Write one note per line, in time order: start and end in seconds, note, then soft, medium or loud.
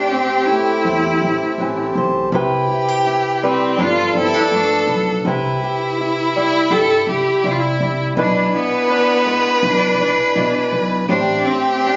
0.00 2.33 A2 medium
0.00 0.12 C4 medium
0.00 0.13 D4 medium
0.00 1.92 G4 loud
0.00 2.29 G4 medium
0.00 2.34 G4 medium
0.00 2.29 C5 medium
0.00 2.29 A5 medium
0.12 0.48 C4 medium
0.46 2.28 A3 medium
0.46 0.85 C4 medium
0.46 1.94 E4 medium
0.85 1.16 E2 loud
0.85 1.23 C4 medium
1.21 1.37 A1 medium
1.21 1.59 C4 medium
1.58 1.92 A1 medium
1.58 2.28 E3 medium
1.58 2.33 C4 medium
1.95 2.29 B1 medium
1.95 2.29 C5 medium
2.31 2.63 C2 medium
2.31 3.75 C3 medium
2.31 3.77 E4 medium
2.31 2.70 E4 medium
2.31 3.80 G4 medium
2.31 2.71 G4 medium
2.31 3.77 B5 medium
2.35 3.44 B4 medium
2.71 2.88 E4 medium
2.88 3.79 G4 soft
3.07 3.75 E4 medium
3.43 3.79 G3 medium
3.43 3.83 C4 medium
3.43 4.19 B4 medium
3.79 4.09 G1 medium
3.79 5.23 F3 medium
3.79 4.52 G3 medium
3.79 4.16 D4 medium
3.79 4.17 F4 loud
3.79 5.27 A4 loud
3.79 5.24 B4 medium
3.79 5.24 A5 medium
4.15 4.30 G1 medium
4.15 4.34 C4 medium
4.19 4.51 E4 medium
4.34 5.25 D4 soft
4.52 4.82 G2 medium
4.52 4.88 A3 medium
4.52 5.05 D4 medium
4.87 5.18 B1 medium
4.87 5.25 B3 medium
5.25 5.55 C2 loud
5.25 7.43 C3 medium
5.25 8.16 E4 medium
5.25 11.05 E4 medium
5.25 6.00 E4 medium
5.25 5.62 G4 medium
5.25 8.14 B4 medium
5.25 8.14 B5 medium
5.64 6.71 G4 medium
6.01 7.08 E4 medium
6.36 7.44 G3 medium
6.36 6.73 E4 medium
6.70 7.01 G2 medium
6.70 8.13 G4 medium
6.70 7.08 A4 loud
7.07 7.22 C2 medium
7.07 8.17 E4 medium
7.07 7.48 G4 medium
7.44 7.74 C3 medium
7.44 8.12 C3 medium
7.44 7.80 G3 medium
7.44 7.53 E4 loud
7.51 7.61 F4 medium
7.60 7.99 E4 loud
7.80 8.10 C2 medium
7.80 8.17 G3 medium
8.15 8.47 B1 loud
8.15 10.35 B2 medium
8.15 8.89 D4 medium
8.15 8.52 D4 medium
8.15 8.54 E4 medium
8.15 11.11 B4 loud
8.15 9.25 B4 medium
8.15 11.05 D5 medium
8.15 11.05 G#5 medium
8.54 9.60 B3 medium
8.54 9.63 E4 medium
8.90 9.99 D4 medium
9.25 11.04 G#3 medium
9.25 10.72 B4 medium
9.63 9.93 B1 loud
9.63 9.98 D4 medium
9.63 10.36 E4 medium
9.98 10.14 B1 medium
9.98 11.04 D4 medium
9.98 10.69 D4 medium
10.36 10.66 B2 medium
10.36 11.04 B2 medium
10.36 11.10 E4 medium
10.72 11.02 B1 medium
10.72 11.05 B4 medium
11.08 11.39 A1 loud
11.08 11.96 A2 medium
11.08 11.96 C4 medium
11.08 11.82 C4 medium
11.08 11.47 D4 loud
11.08 11.96 G4 medium
11.08 11.96 G4 loud
11.08 11.45 G4 medium
11.08 11.96 C5 medium
11.08 11.96 A5 medium
11.45 11.74 C4 medium
11.45 11.96 G4 medium
11.75 11.88 C4 medium
11.84 11.96 C4 medium
11.84 11.96 D4 loud